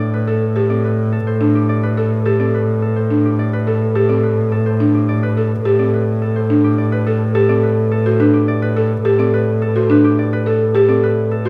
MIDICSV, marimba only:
0, 0, Header, 1, 2, 480
1, 0, Start_track
1, 0, Key_signature, 0, "minor"
1, 0, Tempo, 566038
1, 834, Time_signature, 3, 2, 24, 8
1, 9745, End_track
2, 0, Start_track
2, 0, Title_t, "Marimba"
2, 0, Program_c, 0, 12
2, 234, Note_on_c, 0, 69, 47
2, 390, Note_off_c, 0, 69, 0
2, 473, Note_on_c, 0, 67, 56
2, 594, Note_on_c, 0, 60, 46
2, 630, Note_off_c, 0, 67, 0
2, 750, Note_off_c, 0, 60, 0
2, 1193, Note_on_c, 0, 62, 63
2, 1350, Note_off_c, 0, 62, 0
2, 1675, Note_on_c, 0, 69, 57
2, 1830, Note_off_c, 0, 69, 0
2, 1913, Note_on_c, 0, 67, 63
2, 2034, Note_on_c, 0, 60, 54
2, 2070, Note_off_c, 0, 67, 0
2, 2190, Note_off_c, 0, 60, 0
2, 2633, Note_on_c, 0, 62, 60
2, 2790, Note_off_c, 0, 62, 0
2, 3114, Note_on_c, 0, 69, 51
2, 3270, Note_off_c, 0, 69, 0
2, 3353, Note_on_c, 0, 67, 67
2, 3474, Note_on_c, 0, 60, 56
2, 3510, Note_off_c, 0, 67, 0
2, 3630, Note_off_c, 0, 60, 0
2, 4073, Note_on_c, 0, 62, 65
2, 4230, Note_off_c, 0, 62, 0
2, 4555, Note_on_c, 0, 69, 53
2, 4710, Note_off_c, 0, 69, 0
2, 4795, Note_on_c, 0, 67, 66
2, 4915, Note_on_c, 0, 60, 57
2, 4950, Note_off_c, 0, 67, 0
2, 5070, Note_off_c, 0, 60, 0
2, 5513, Note_on_c, 0, 62, 68
2, 5670, Note_off_c, 0, 62, 0
2, 5995, Note_on_c, 0, 69, 57
2, 6151, Note_off_c, 0, 69, 0
2, 6234, Note_on_c, 0, 67, 71
2, 6355, Note_on_c, 0, 60, 58
2, 6390, Note_off_c, 0, 67, 0
2, 6511, Note_off_c, 0, 60, 0
2, 6835, Note_on_c, 0, 66, 58
2, 6953, Note_on_c, 0, 62, 72
2, 6991, Note_off_c, 0, 66, 0
2, 7110, Note_off_c, 0, 62, 0
2, 7434, Note_on_c, 0, 69, 63
2, 7590, Note_off_c, 0, 69, 0
2, 7674, Note_on_c, 0, 67, 73
2, 7793, Note_on_c, 0, 60, 62
2, 7830, Note_off_c, 0, 67, 0
2, 7950, Note_off_c, 0, 60, 0
2, 8274, Note_on_c, 0, 66, 63
2, 8394, Note_on_c, 0, 62, 80
2, 8430, Note_off_c, 0, 66, 0
2, 8550, Note_off_c, 0, 62, 0
2, 8873, Note_on_c, 0, 69, 62
2, 9030, Note_off_c, 0, 69, 0
2, 9113, Note_on_c, 0, 67, 78
2, 9233, Note_on_c, 0, 60, 65
2, 9270, Note_off_c, 0, 67, 0
2, 9390, Note_off_c, 0, 60, 0
2, 9713, Note_on_c, 0, 66, 67
2, 9745, Note_off_c, 0, 66, 0
2, 9745, End_track
0, 0, End_of_file